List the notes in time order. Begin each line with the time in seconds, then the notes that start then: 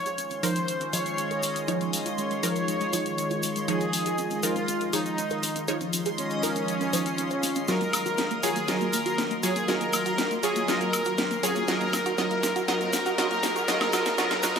Already playing: D#3 F3 G#3 C#4 D#4 F4 C#5 D#5 C6
0.06 G#4, closed hi-hat, shaker
0.18 C#4, closed hi-hat, shaker
0.30 C#4, closed hi-hat, shaker
0.43 F3 D#4 A#4 C5, open hi-hat, shaker
0.56 C#4, closed hi-hat, shaker
0.68 C#4, closed hi-hat, shaker
0.81 C#4, closed hi-hat, shaker
0.93 F3 D#4 G#4 C#5, open hi-hat, shaker
1.06 C#4, closed hi-hat, shaker
1.18 C#4, closed hi-hat, shaker
1.31 A#4, closed hi-hat, shaker
1.43 C#4, open hi-hat, shaker
1.56 C#4, closed hi-hat, shaker
1.68 F3 D#4 F4 C#5, closed hi-hat, shaker
1.81 G#3, closed hi-hat, shaker
1.93 G#3, open hi-hat, shaker
2.06 F4, closed hi-hat, shaker
2.18 G#3 C#5, closed hi-hat, shaker
2.31 G#3, closed hi-hat, shaker
2.43 F3 D#4 F4 A#4, open hi-hat, shaker
2.56 closed hi-hat, shaker
2.68 G#3, closed hi-hat, shaker
2.81 G#3, closed hi-hat, shaker
2.93 F3 D#4 F4 C#5, open hi-hat, shaker
3.06 G#3, closed hi-hat, shaker
3.18 G#3, closed hi-hat, shaker
3.31 F4, closed hi-hat, shaker
3.43 G#3, open hi-hat, shaker
3.56 G#3, closed hi-hat, shaker
3.68 F3 D#4 G#4 C#5, closed hi-hat, shaker
3.81 C#4, closed hi-hat, shaker
3.93 C#4, open hi-hat, shaker
4.06 G#4, closed hi-hat, shaker
4.18 C#4, closed hi-hat, shaker
4.30 C#4, closed hi-hat, shaker
4.43 F3 D#4 F4 A#4, open hi-hat, shaker
4.56 C#4, closed hi-hat, shaker
4.68 C#4, closed hi-hat, shaker
4.81 C#4, closed hi-hat, shaker
4.93 F3 D#4 G#4 C#5, open hi-hat, shaker
5.06 C#4, closed hi-hat, shaker
5.18 C#4, closed hi-hat, shaker
5.30 A#4, closed hi-hat, shaker
5.43 C#4, open hi-hat, shaker
5.56 C#4, closed hi-hat, shaker
5.68 F3 D#4 G#4 C#5, closed hi-hat, shaker
5.81 C#4, closed hi-hat, shaker
5.93 C#4, open hi-hat, shaker
6.05 G#4, closed hi-hat, shaker
6.18 C#4, closed hi-hat, shaker
6.30 C#4, closed hi-hat, shaker
6.43 F3 D#4 A#4, open hi-hat, shaker
6.56 C#4, closed hi-hat, shaker
6.68 C#4, closed hi-hat, shaker
6.81 C#4, closed hi-hat, shaker
6.93 F3 D#4 C5 C#5, open hi-hat, shaker
7.06 C#4, closed hi-hat, shaker
7.18 C#4, closed hi-hat, shaker
7.31 C#5, closed hi-hat, shaker
7.43 C#4, open hi-hat, shaker
7.55 C#4, closed hi-hat, shaker
7.68 F#3 A#3 F4 F#4 A#4 D#5, snare, closed hi-hat, riser, shaker
7.81 A#3, closed hi-hat, shaker
7.93 A#3, open hi-hat, high woodblock, shaker
8.06 F#4, closed hi-hat, shaker
8.18 A#3, snare, closed hi-hat, shaker
8.31 A#3, closed hi-hat, shaker
8.43 F#3 F4 G#4 C#5, open hi-hat, shaker
8.56 A#3, closed hi-hat, shaker
8.68 F#3 F4 F#4 A#4 D#5, snare, closed hi-hat, shaker
8.81 A#3, closed hi-hat, shaker
8.93 A#3, open hi-hat, shaker
9.06 F#4, closed hi-hat, shaker
9.18 A#3, snare, closed hi-hat, shaker
9.31 A#3, closed hi-hat, shaker
9.43 F#3 F4 G#4 C#5, open hi-hat, shaker
9.56 A#3, closed hi-hat, shaker
9.68 F#3 F4 F#4 A#4 D#5, snare, closed hi-hat, shaker
9.81 A#3, closed hi-hat, shaker
9.93 A#3, open hi-hat, high woodblock, shaker
10.06 F#4, closed hi-hat, shaker
10.18 A#3, snare, closed hi-hat, shaker
10.31 A#3, closed hi-hat, shaker
10.43 F#3 F4 G#4 C#5, open hi-hat, shaker
10.56 A#3, closed hi-hat, shaker
10.68 F#3 F4 F#4 A#4 D#5, snare, closed hi-hat, shaker
10.81 A#3, closed hi-hat, shaker
10.93 A#3, open hi-hat, high woodblock, shaker
11.05 F#4, closed hi-hat, shaker
11.18 A#3, snare, closed hi-hat, shaker
11.31 A#3, closed hi-hat, shaker
11.43 F#3 F4 G#4 C#5, open hi-hat, shaker
11.56 A#3, closed hi-hat, shaker
11.68 F#3 C4 F4 F#4 A#4 D#5, snare, closed hi-hat, shaker
11.81 A#3, closed hi-hat, shaker
11.93 A#3, snare, open hi-hat, high woodblock, shaker
12.06 F#4, closed hi-hat, shaker
12.18 F#3 F4 F#4 A#4 D#5, snare, closed hi-hat, shaker
12.31 A#3, closed hi-hat, shaker
12.43 A#3, snare, open hi-hat, shaker
12.56 F#4, closed hi-hat, shaker
12.68 F#3 F4 F#4 A#4 D#5, snare, closed hi-hat, shaker
12.81 A#3, closed hi-hat, shaker
12.93 A#3, snare, open hi-hat, shaker
13.06 F#4, closed hi-hat, shaker
13.18 F#3 F4 F#4 A#4 D#5, snare, closed hi-hat, shaker
13.31 A#3, closed hi-hat, shaker
13.43 A#3, snare, open hi-hat, shaker
13.56 F#4, closed hi-hat, shaker
13.68 F#3 F4 F#4 A#4 D#5, snare, closed hi-hat, shaker
13.81 A#3, snare, closed hi-hat, high woodblock, shaker
13.93 F#3 F4 F#4 A#4 D#5, snare, open hi-hat, high woodblock, shaker
14.06 A#3, snare, closed hi-hat, shaker
14.18 F#3 F4 F#4 A#4 D#5, snare, closed hi-hat, shaker
14.31 A#3, snare, closed hi-hat, shaker
14.43 F#3 F4 F#4 A#4 D#5, snare, open hi-hat, shaker
14.56 A#3, snare, closed hi-hat